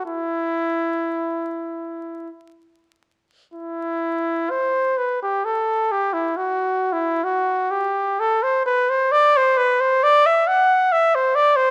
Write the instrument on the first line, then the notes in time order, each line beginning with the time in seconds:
trumpet
0.06 E4
3.54 E4
4.51 C5
4.98 B4
5.23 G4
5.45 A4
5.92 G4
6.13 E4
6.37 F#4
6.93 E4
7.24 F#4
7.71 G4
8.20 A4
8.43 C5
8.66 B4
8.90 C5
9.12 D5
9.37 C5
9.57 B4
9.81 C5
10.03 D5
10.26 E5
10.48 F#5
10.92 E5
11.15 C5
11.35 D5
11.56 C5